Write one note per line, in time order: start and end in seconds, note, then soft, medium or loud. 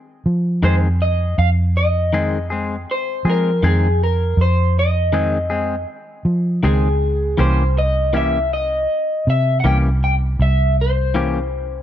0.26 0.60 F3 medium
0.62 1.34 F2 medium
0.62 0.87 D#3 medium
0.62 0.87 G#3 medium
0.62 0.87 C4 medium
0.62 0.88 G#4 medium
0.62 0.74 C5 medium
1.02 1.36 D#5 medium
1.38 2.84 F2 medium
1.38 1.49 F5 medium
1.77 2.47 D#5 medium
2.13 2.37 D#3 medium
2.13 2.37 G#3 medium
2.13 2.37 C4 medium
2.13 2.37 G#4 medium
2.50 2.76 G#3 soft
2.50 2.75 C4 soft
2.50 2.74 G#4 soft
2.91 3.28 C5 medium
3.25 3.60 F3 medium
3.25 3.51 G#3 soft
3.25 3.50 C4 soft
3.25 3.49 G#4 soft
3.30 3.66 A#4 medium
3.63 4.34 F2 medium
3.63 3.87 D#3 medium
3.63 3.87 G#3 medium
3.63 3.87 C4 medium
3.63 3.88 G#4 medium
3.63 4.03 G#4 medium
4.03 4.41 A#4 medium
4.37 5.84 F2 medium
4.41 4.79 C5 medium
4.79 5.86 D#5 medium
5.13 5.37 D#3 medium
5.13 5.37 G#3 medium
5.13 5.37 C4 medium
5.13 5.38 G#4 medium
5.50 5.75 G#3 soft
5.50 5.75 C4 soft
5.50 5.74 G#4 medium
6.25 6.60 F3 medium
6.63 7.35 C#2 medium
6.63 6.87 D#3 medium
6.63 6.87 G#3 medium
6.63 6.88 C4 medium
6.63 6.88 G#4 medium
6.63 7.42 G#4 medium
7.37 8.85 C2 medium
7.37 7.62 E3 medium
7.37 7.62 A#3 medium
7.37 7.62 C#4 medium
7.37 7.63 G4 medium
7.37 7.78 C5 medium
7.78 8.16 D#5 medium
8.13 8.37 E3 medium
8.13 8.37 A#3 medium
8.13 8.38 C#4 medium
8.13 8.38 G4 medium
8.13 8.53 E5 medium
8.53 9.29 D#5 loud
9.27 9.62 C3 medium
9.27 9.60 E5 loud
9.60 10.35 C2 medium
9.60 9.65 F#5 medium
9.64 9.88 E3 medium
9.64 9.88 A#3 medium
9.64 9.88 C#4 medium
9.64 9.89 G4 medium
9.64 9.76 G5 loud
10.04 10.14 G5 medium
10.39 11.82 C2 loud
10.39 10.76 E5 medium
10.81 11.82 C5 medium
11.14 11.38 E3 medium
11.14 11.38 A#3 medium
11.14 11.39 C#4 medium
11.14 11.39 G4 medium